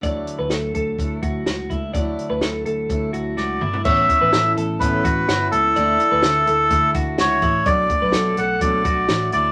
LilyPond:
<<
  \new Staff \with { instrumentName = "Melodica" } { \time 4/4 \key d \major \tempo 4 = 126 r1 | r2. d''4 | e''4. r8 b'4. a'8~ | a'2~ a'8 r8 cis''4 |
d''4. fis''8 d''4. d''8 | }
  \new Staff \with { instrumentName = "Clean electric guitar" } { \time 4/4 \key d \major d''8. b'16 a'8 a'4 fis'8 fis'8 e'8 | d''8. b'16 a'8 a'4 fis'8 fis'8 e'8 | cis''8. b'16 a'8 a'4 fis'8 fis'8 e'8 | d''8. b'16 a'8 a'4 fis'8 fis'8 e'8 |
d''8. b'16 a'8 a'4 fis'8 fis'8 e'8 | }
  \new Staff \with { instrumentName = "Steel-string acoustic guitar" } { \time 4/4 \key d \major <d fis a d' e'>2 <fis a d' e'>4. <a d' e'>8 | <d fis a d' e'>2 <fis a d' e'>4. <a d' e'>8 | <a, e b cis' e'>8 <b cis' e'>8 <e b cis' e'>8 <b cis' e'>8 <a, e b cis' e'>8 <b cis' e'>8 <e b cis' e'>8 <b cis' e'>8 | <d a d' e'>8 <a e'>8 <d a d' e'>8 <a d' e'>8 <d a d' e'>8 <a d' e'>8 <d a d' e'>8 <a d' e'>8 |
<b, fis a d' fis'>8 <a d' fis'>8 <fis a d' fis'>8 <a d' fis'>8 <b, fis a d' fis'>8 <a d' fis'>8 <fis a d' fis'>8 <a d' fis'>8 | }
  \new Staff \with { instrumentName = "Picked electric bass" } { \clef bass \time 4/4 \key d \major d,8 r16 d,16 d,8 d,8 d,8 d,8 cis,8 cis,8 | d,8 r16 d,16 d,8 d,8 d,8 d,8 cis,8 g,,8 | a,,8 r16 a,,16 a,,8 a,,8 a,,8 a,,8 g,,8 cis,8 | d,8 r16 d,16 d,8 d,8 d,8 d,8 cis,8 a,,8 |
b,,8 r16 b,,16 b,,8 b,,8 b,,8 b,,8 a,,8 d,8 | }
  \new DrumStaff \with { instrumentName = "Drums" } \drummode { \time 4/4 <hh bd>8 hh8 <hh sn>8 <hh bd>8 <hh bd>8 <hh bd>8 <hh sn>8 <hh bd>8 | <hh bd>8 hh8 <hh sn>8 hh8 <hh bd>8 hh8 sn8 toml16 tomfh16 | <cymc bd>8 <hh bd>8 <hh sn>8 hh8 <hh bd>8 <hh bd>8 <hh sn>8 hh8 | hh8 hh8 <hh sn>8 hh8 <hh bd>8 <hh bd>8 <hh sn>8 <hh bd>8 |
<hh bd>8 <hh bd>8 <hh sn>8 hh8 <hh bd>8 <hh bd>8 <hh sn>8 hh8 | }
>>